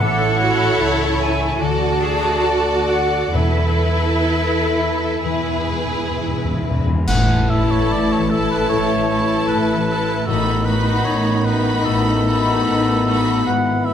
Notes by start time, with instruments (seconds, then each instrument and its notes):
Already playing: harp E4 E5 E6
0.00 double bass section A1, timpani A2, harp A2, viola section E4, cello section A4, violin section A4 C#5, flute section F#5
0.21 harp E3
0.41 harp A3, cello section F#4
0.61 harp E4
0.81 double bass section C#2, cello section E4, harp C#5
1.00 harp A4
1.20 harp E5, flute section G#5
1.40 harp C#6
1.60 double bass section D2, harp D3, viola section F#4, cello section F#4, violin section A4 D5, flute section A5
1.80 harp D4
2.01 harp A3, cello section G#4
2.21 harp F#4
2.43 cello section F#4, harp D5
2.65 harp A4
2.88 flute section F#5, harp F#5
3.12 harp D6
3.34 double bass section E2, timpani E2, harp E3, viola section E4, cello section E4, violin section A4 B4, flute section E5
3.60 harp A3
3.84 harp E4
4.07 harp B4
4.31 harp A4
4.54 harp E5
4.78 harp B5
5.01 harp A5
5.24 double bass section E2, timpani E2, harp E3, viola section E4, violin section G#4 B4
5.33 timpani E2
5.41 timpani E2
5.49 timpani E2, harp G#3
5.58 timpani E2
5.67 timpani E2
5.73 timpani E2, harp E4
5.85 timpani E2
5.94 timpani E2, harp B4
6.02 timpani E2
6.11 timpani E2
6.18 timpani E2, harp G#4
6.28 timpani E2
6.36 timpani E2
6.41 timpani E2, harp E5
6.53 timpani E2
6.62 timpani E2, harp B5
6.71 timpani E2
6.78 timpani E2
6.87 timpani E2, harp G#5
6.94 timpani E2
7.06 double bass section A1, cello section A2, harp A2, bassoon E3, french horn section A3 E4, oboe F#5, concert bass drum, crash
7.10 flute section A5
7.37 harp E3
7.49 viola section E4, violin section A4 A5, oboe E5
7.64 harp A3
7.71 oboe C#5
7.91 double bass section A1, cello section A2, harp E4, oboe D5
8.12 oboe C#5
8.19 harp E3
8.30 viola section E4, oboe A4, violin section A4 A5
8.45 harp A3
8.51 oboe B4
8.69 double bass section A1, harp A2, cello section A2, oboe C#5
8.96 harp E3
9.10 viola section E4, violin section A4 A5
9.23 harp A3
9.48 double bass section A1, cello section A2, harp E4, oboe B4
9.76 harp E3
9.88 viola section E4, violin section A4 A5
10.02 harp A3
10.26 double bass section A1, harp A2, timpani A2, cello section A2, bassoon D#3, french horn section B3 D#4, viola section D#4, violin section F#4 B5, oboe A4, flute section B5
10.54 harp A3
10.65 viola section D#4, violin section F#4 B5, oboe B4
10.81 harp B3
11.05 double bass section A1, cello section A2, harp D#4, oboe C#5
11.34 harp A3
11.45 viola section D#4, violin section F#4 B5, oboe B4
11.59 harp B3
11.85 double bass section A1, harp A2, cello section A2, oboe A4
12.14 harp A3
12.27 viola section D#4, violin section F#4 B5
12.41 harp B3
12.67 double bass section A1, cello section A2, harp D#4
12.93 harp A3
13.06 viola section D#4, violin section F#4 B5
13.20 harp B3
13.46 double bass section G#1, harp G#2, cello section G#2, bassoon E3, french horn section E4, oboe F#5
13.73 harp G#3
13.85 viola section B3, violin section E4 B5, oboe E5